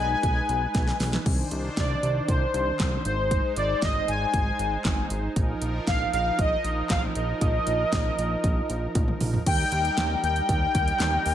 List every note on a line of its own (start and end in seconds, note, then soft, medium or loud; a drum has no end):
0.00 0.16 B1 loud
0.00 1.24 G#3 medium
0.00 1.24 D#4 medium
0.00 1.24 B4 medium
0.00 0.96 G#5 loud
0.23 0.41 B1 loud
0.23 kick loud
0.23 closed hi-hat medium
0.49 0.67 B1 loud
0.49 closed hi-hat medium
0.75 0.93 B1 loud
0.75 kick loud
0.75 snare medium
0.75 closed hi-hat medium
0.87 snare medium
1.00 1.18 B1 loud
1.00 snare medium
1.00 open hi-hat medium
1.13 snare medium
1.26 1.44 C2 loud
1.26 3.04 D#3 medium
1.26 3.04 D4 medium
1.26 5.32 C5 medium
1.26 kick loud
1.26 crash medium
1.51 1.70 C2 loud
1.51 closed hi-hat medium
1.77 1.95 C2 loud
1.77 2.30 D5 medium
1.77 kick loud
1.77 snare loud
1.77 closed hi-hat medium
2.03 2.21 C2 medium
2.03 closed hi-hat medium
2.28 2.46 C2 loud
2.28 3.04 C5 medium
2.28 kick loud
2.28 closed hi-hat medium
2.54 2.72 C2 loud
2.54 closed hi-hat medium
2.80 2.98 C2 loud
2.80 kick loud
2.80 snare loud
2.80 clap loud
2.80 closed hi-hat medium
3.05 3.41 G#1 loud
3.05 5.34 G#3 medium
3.05 9.42 D#4 medium
3.05 3.53 C5 loud
3.05 closed hi-hat medium
3.31 kick loud
3.31 closed hi-hat medium
3.56 3.75 G#1 loud
3.56 3.83 D5 loud
3.56 closed hi-hat medium
3.82 4.00 G#1 loud
3.82 4.09 D#5 loud
3.82 kick loud
3.82 snare loud
3.82 closed hi-hat medium
4.08 4.26 G#1 loud
4.08 5.07 G#5 loud
4.08 closed hi-hat medium
4.34 4.52 G#1 loud
4.34 kick loud
4.34 closed hi-hat medium
4.59 4.77 G#1 loud
4.59 closed hi-hat medium
4.85 5.03 G#1 loud
4.85 kick loud
4.85 snare loud
4.85 clap loud
4.85 closed hi-hat medium
5.10 5.29 G#1 loud
5.10 closed hi-hat medium
5.36 5.54 A#1 loud
5.36 9.42 F3 medium
5.36 9.42 A#4 medium
5.36 kick loud
5.36 closed hi-hat medium
5.62 5.80 A#1 medium
5.62 closed hi-hat medium
5.87 6.05 A#1 loud
5.87 6.12 F5 loud
5.87 kick loud
5.87 snare loud
5.87 closed hi-hat medium
6.13 6.31 A#1 loud
6.13 6.40 F5 loud
6.13 closed hi-hat medium
6.39 6.57 A#1 loud
6.39 6.92 D#5 loud
6.39 kick loud
6.39 closed hi-hat medium
6.64 6.82 A#1 medium
6.64 closed hi-hat medium
6.90 7.08 A#1 loud
6.90 7.02 F5 loud
6.90 kick loud
6.90 snare loud
6.90 clap loud
6.90 closed hi-hat medium
7.15 7.34 A#1 medium
7.15 9.17 D#5 loud
7.15 closed hi-hat medium
7.41 7.59 A#1 loud
7.41 kick loud
7.41 closed hi-hat medium
7.67 7.85 A#1 medium
7.67 closed hi-hat medium
7.93 8.11 A#1 loud
7.93 kick loud
7.93 snare loud
7.93 closed hi-hat medium
8.18 8.36 A#1 loud
8.18 closed hi-hat medium
8.44 8.62 A#1 loud
8.44 kick loud
8.44 closed hi-hat medium
8.70 8.87 A#1 loud
8.70 closed hi-hat medium
8.95 9.13 A#1 loud
8.95 kick loud
8.95 closed hi-hat medium
8.95 high tom medium
9.08 mid tom medium
9.21 9.39 A#1 loud
9.21 mid tom loud
9.21 open hi-hat medium
9.34 floor tom loud
9.46 9.64 D#2 loud
9.46 11.35 G3 medium
9.46 11.35 D#4 medium
9.46 11.35 A#4 medium
9.46 10.22 G5 loud
9.46 kick loud
9.46 closed hi-hat medium
9.46 crash loud
9.72 9.90 D#2 loud
9.72 closed hi-hat medium
9.85 closed hi-hat medium
9.98 10.16 D#2 loud
9.98 snare loud
9.98 closed hi-hat medium
10.23 10.41 D#2 loud
10.23 11.35 G5 loud
10.23 closed hi-hat medium
10.36 closed hi-hat medium
10.49 10.67 D#2 loud
10.49 kick loud
10.49 closed hi-hat medium
10.75 10.93 D#2 loud
10.75 kick loud
10.75 closed hi-hat medium
10.88 closed hi-hat medium
11.00 11.18 D#2 loud
11.00 snare loud
11.00 clap loud
11.00 closed hi-hat medium
11.26 11.35 D#2 loud
11.26 open hi-hat medium